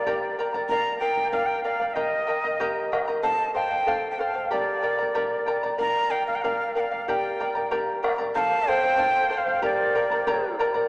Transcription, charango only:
0.06 G4 A#4 D5 G5 A#5
0.39 A#4 D5 G5 A#5
0.54 A#4 D5 A#5
0.70 A#4 D5 F5
1.01 A#4 D5 F5
1.17 D5 F5
1.32 A#4 D5 F5
1.64 A#4 D5 F5
1.80 D5 F5
1.95 G4 A#4 D#5 G5 A#5
2.27 A#4 D#5 G5 A#5
2.44 A#4 D#5 A#5
2.60 G4 A#4 D#5 G5 A#5
2.92 A#4 D#5 G5 A#5
3.08 A#4 D#5 A#5
3.23 A4 C5 F5
3.54 A4 C5 F5
3.71 C5 F5
3.87 A4 C5 F5
4.19 A4 C5 F5
4.34 C5 F5
4.51 G4 A#4 D5 G5 A#5
4.82 A#4 D5 G5 A#5
4.98 A#4 D5 A#5
5.14 G4 A#4 D5 G5 A#5
5.46 A#4 D5 G5 A#5
5.63 A#4 D5 A#5
5.78 A#4 D5 F5
6.10 A#4 D5 F5
6.28 D5 F5
6.44 A#4 D5 F5
6.75 A#4 D5 F5
6.91 D5 F5
7.08 G4 A#4 D5 G5 A#5
7.40 A#4 D5 G5 A#5
7.55 A#4 D5 A#5
7.71 G4 A#4 D5 G5 A#5
8.03 A#4 D5 G5 A#5
8.18 A#4 D5 A#5
8.35 A4 C5 F5
8.68 A4 C5 F5
8.83 C5 F5
8.97 A4 C5 F5
9.30 A4 C5 F5
9.46 C5 F5
9.62 G4 A#4 D5 G5 A#5
9.95 A#4 D5 G5 A#5
10.11 A#4 D5 A#5
10.27 G4 A#4 D5 G5 A#5
10.59 A#4 D5 G5 A#5
10.74 A#4 D5 A#5

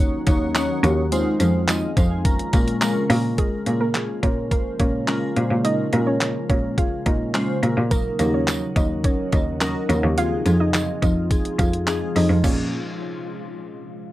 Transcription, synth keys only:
0.00 A#3 C#4 D#4 F#4 C#5
0.27 A#3 C#4 D#4 F#4 C#5
0.55 A#3 C#4 D#4 F#4 C#5
0.84 A#3 C#4 D#4 F#4 C#5
1.12 G#3 C4 D#4 F4 C5
1.40 G#3 C4 D#4 F4 C5
1.68 G#3 C4 D#4 F4 D#5
1.96 G#3 C4 D#4 F4 C5 F5
2.11 G#5
2.25 G#3 A#3 C#4 F4 A#4 A#5
2.53 G#3 A#3 C#4 F4 A#4
2.82 G#3 A#3 C#4 F4 A#4 C#6
3.10 G#3 A#3 C#4 F4 A#4
3.38 G#3 C#4 F4 A#4
3.66 G#3 C#4 F4 A#4
3.95 G#3 C#4 F4 G#4
4.23 G#3 C#4 F4 A#4
4.51 G#3 C#4 F4 C5
4.80 G#3 C#4 F4 A#4
5.08 G#3 C#4 F4 A#4
5.36 G#3 C#4 F4 C5
5.64 G#3 C#4 F4 A#4
5.93 G#3 C#4 F4 A#4
6.21 G#3 C#4 F4 A#4
6.50 G#3 C#4 F4 A#4
6.78 G#3 C#4 F4 G#4
7.06 G#3 C#4 F4 A#4
7.34 G#3 C#4 F4 C5
7.62 G#3 C#4 F4 A#4
7.91 F#3 C#4 D#4 A#4
8.19 F#3 C#4 D#4 A#4
8.48 F#3 C#4 D#4 A#4
8.76 F#3 C#4 D#4 A#4
9.04 F#3 C#4 D#4 A#4
9.33 F#3 C#4 D#4 A#4
9.61 F#3 C#4 D#4 A#4
9.89 F#3 C#4 D#4 A#4
10.17 F3 C4 D#4 G#4
10.46 F3 C4 D#4 G#4
10.74 F3 C4 D#4 G#4
11.02 F3 C4 D#4 F4
11.31 F3 C4 D#4 G#4
11.59 F3 C4 D#4 G#4
11.87 F3 C4 D#4 G#4
12.15 F3 C4 D#4 G#4
12.44 F3 A#3 C#4 G#4

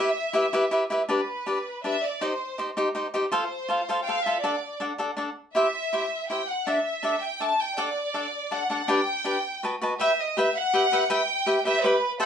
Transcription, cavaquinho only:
0.33 E4 G4 B4 E5
0.53 E4 G4 B4 E5
0.71 E4 G4 B4 E5
0.90 E4 G4 B4 E5
1.09 D4 G4 B4 D5
1.46 D4 G4 B4 D5
1.84 D4 G4 B4 D5
2.21 D#4 G4 C5 D#5
2.58 D#4 G4 C5 D#5
2.77 D#4 G4 C5 D#5
2.95 D#4 G4 C5 D#5
3.14 D#4 G4 C5 D#5
3.32 F4 A4 C5 F5
3.69 F4 A4 C5 F5
3.89 F4 A4 C5 F5
4.07 F4 A4 C5 F5
4.26 F4 A4 C5 F5
4.44 D4 A4 D5 F#5
4.80 D4 A4 D5 F#5
4.98 D4 A4 D5 F#5
5.17 D4 A4 D5 F#5
5.55 E4 G4 C5 E5
5.93 E4 G4 C5 E5
6.30 E4 G4 C5 E5
6.67 D4 A4 D5 E5
7.03 D4 A4 D5 E5
7.40 D4 A4 D5 E5
7.77 D4 A4 D5 F#5
8.14 D4 A4 D5 F#5
8.51 D4 A4 D5 F#5
8.70 D4 A4 D5 F#5
8.88 D4 G4 B4 G5
9.24 D4 G4 B4 G5
9.63 F#4 B4 D#5 A5
9.81 F#4 B4 D#5 A5
10.00 G4 B4 E5 G5
10.37 G4 B4 E5 G5
10.73 G4 B4 E5 G5
10.92 G4 B4 E5 G5
11.10 G4 B4 E5 G5
11.46 G4 B4 E5 G5
11.65 G4 B4 E5 G5
11.84 G4 B4 E5 G5
12.20 A4 C5 E5 G5

